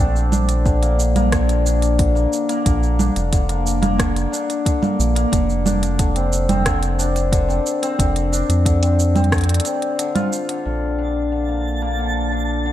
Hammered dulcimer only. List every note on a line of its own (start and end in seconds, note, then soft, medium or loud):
0.00 0.64 D3 medium
0.00 0.88 A3 medium
0.00 3.81 C4 medium
0.00 0.31 D4 loud
0.32 1.66 D4 medium
0.66 1.31 D3 medium
0.82 1.15 A#3 medium
1.16 2.15 A#3 medium
1.32 1.97 D3 medium
1.66 2.99 D4 medium
1.98 2.64 D3 medium
2.15 2.48 A#3 medium
2.49 3.48 A#3 medium
2.66 3.31 D3 medium
2.99 4.32 D4 medium
3.32 3.97 D3 medium
3.49 3.81 A#3 medium
3.82 4.81 A#3 loud
3.98 4.64 D3 medium
4.32 5.65 D4 medium
4.65 5.31 D3 medium
4.82 5.15 A#3 medium
5.15 9.44 A#3 medium
5.32 5.98 D3 medium
5.66 6.98 D4 medium
5.99 6.64 D3 medium
6.15 6.48 C4 medium
6.49 7.48 C4 loud
6.65 7.31 D3 medium
6.99 8.32 D4 medium
7.32 7.98 D3 medium
7.48 7.82 C4 medium
7.82 8.82 C4 loud
7.99 8.64 D3 medium
8.32 10.98 D4 medium
8.66 9.31 D3 medium
8.82 9.15 C4 medium
9.15 9.65 C4 loud
9.32 9.97 D3 medium
9.65 12.72 C4 medium
9.99 10.47 D3 medium
10.15 12.72 F4 medium
10.49 10.64 D3 medium
10.65 11.31 D3 medium
10.98 12.32 D4 medium
11.32 11.98 D3 medium
11.49 11.81 A#3 medium
11.82 12.72 A#3 medium
11.99 12.64 D3 medium
12.32 12.72 D4 medium
12.66 12.72 D3 medium